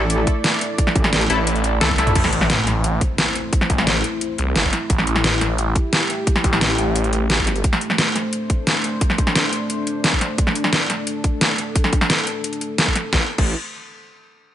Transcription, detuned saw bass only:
1.30 1.80 A1 medium
1.81 2.14 C2 medium
2.15 2.31 A1 medium
2.33 2.66 A1 loud
2.67 3.00 A1 medium
3.70 4.03 A1 loud
4.38 4.54 C2 medium
4.56 4.71 G1 loud
4.90 5.06 A1 medium
5.07 5.40 A1 loud
5.41 5.74 A1 medium
6.44 6.77 A1 loud
6.78 7.38 A1 medium
7.38 7.63 G#1 medium
13.13 13.22 A1 medium
13.38 13.54 A1 loud

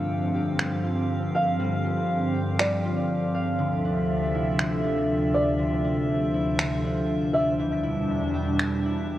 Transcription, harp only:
0.00 0.58 G3 medium
0.00 1.65 D4 medium
0.00 0.83 F4 medium
0.00 0.80 A5 medium
0.34 2.34 G4 medium
0.59 1.58 G3 medium
0.84 1.84 F4 medium
1.35 3.01 F5 medium
1.59 2.58 G3 medium
1.84 2.84 F4 medium
2.34 4.69 G4 medium
2.59 3.64 G3 medium
2.85 4.41 F4 medium
3.34 4.41 F5 medium
3.59 4.58 D3 medium
3.85 4.84 D4 medium
4.35 6.34 E4 medium
4.59 5.58 D3 medium
4.84 5.84 D4 medium
5.35 7.19 D5 medium
5.59 6.58 D3 medium
5.85 6.84 D4 medium
6.34 7.83 E4 medium
6.59 7.64 D3 medium
6.85 9.18 D4 medium
7.34 9.18 D5 medium
7.60 8.58 E3 loud
7.83 8.84 E4 medium
8.34 9.18 G4 medium
8.59 9.18 E3 medium
8.85 9.18 E4 medium

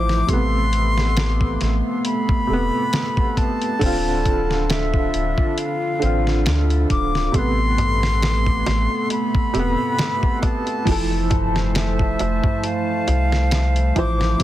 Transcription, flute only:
0.00 0.31 D6 loud
0.30 1.80 C6 loud
2.05 3.39 B5 loud
3.38 4.72 A5 loud
4.70 5.60 E5 loud
5.59 6.65 F5 loud
6.91 7.37 D6 loud
7.36 9.11 C6 loud
9.12 10.40 B5 loud
10.44 11.47 A5 loud
11.77 12.67 E5 medium
12.66 14.00 F5 loud
13.98 14.43 D6 medium

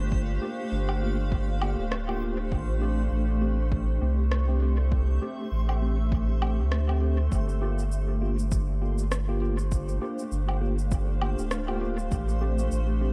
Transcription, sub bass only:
0.00 0.39 G1 loud
0.72 1.76 G1 loud
1.79 2.53 D1 medium
2.52 3.09 A1 medium
3.12 3.99 A1 loud
4.02 5.19 C2 loud
5.52 6.60 A1 loud
6.59 7.29 D2 medium
7.32 9.99 G1 medium
10.32 11.36 G1 loud
11.39 12.09 D1 medium
12.12 12.69 A1 medium
12.72 13.13 A1 loud

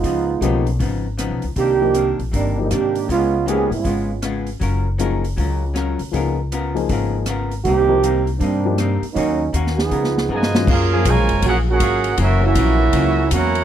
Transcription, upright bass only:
0.04 0.39 C#2 medium
0.41 0.77 B1 medium
0.80 1.27 G#1 medium
1.30 1.42 B1 medium
1.44 1.55 C#2 medium
1.56 2.14 C2 medium
2.19 2.32 A#1 medium
2.33 2.68 G1 medium
2.72 3.06 G#2 medium
3.09 3.67 C#2 medium
3.71 3.83 G#2 medium
3.85 4.57 G#1 medium
4.61 5.33 F#1 medium
5.38 5.95 C#2 medium
6.00 6.12 D2 medium
6.13 6.85 C#2 medium
6.90 7.61 G#1 loud
7.65 8.36 C2 medium
8.40 8.98 G2 medium
9.02 muted upright bass stroke soft
9.17 9.51 D#2 medium
9.54 9.89 D#2 medium
9.91 10.26 C#2 medium
10.29 10.64 G2 medium
10.67 11.03 F#2 loud
11.05 11.17 B1 loud
11.17 11.29 A#1 medium
11.29 11.41 F#1 medium
11.43 11.79 A#1 medium
11.80 12.17 G#1 medium
12.18 12.54 F#1 medium
12.56 12.92 A#1 loud
12.93 13.30 C#2 loud
13.31 13.64 E2 medium

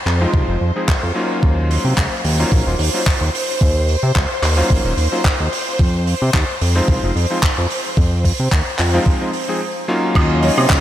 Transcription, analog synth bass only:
0.06 0.26 F2 medium
0.34 0.44 C2 medium
0.48 0.57 F1 loud
0.61 0.72 F2 loud
1.03 1.12 F2 medium
1.43 1.78 D#2 medium
1.85 1.94 C3 medium
1.98 2.08 C#2 medium
2.25 2.45 D#2 medium
2.52 2.63 A#1 medium
2.67 2.76 D#1 loud
2.79 2.90 D#2 loud
3.21 3.30 D#2 medium
3.61 3.96 D#2 loud
4.03 4.12 C3 medium
4.16 4.26 C#2 medium
4.42 4.63 D#2 medium
4.70 4.81 A#1 medium
4.85 4.94 D#1 loud
4.97 5.08 D#2 loud
5.40 5.49 D#2 medium
5.79 6.15 F2 medium
6.22 6.31 C3 loud
6.34 6.44 D#2 medium
6.62 6.81 F2 medium
6.88 6.99 C2 medium
7.03 7.12 F1 loud
7.16 7.26 F2 loud
7.58 7.67 F2 medium
7.97 8.33 F2 medium
8.40 8.49 C3 loud
8.52 8.62 D#2 medium
8.79 8.99 F2 medium
10.15 10.51 D#2 medium
10.58 10.67 C3 loud
10.70 10.80 C#2 medium

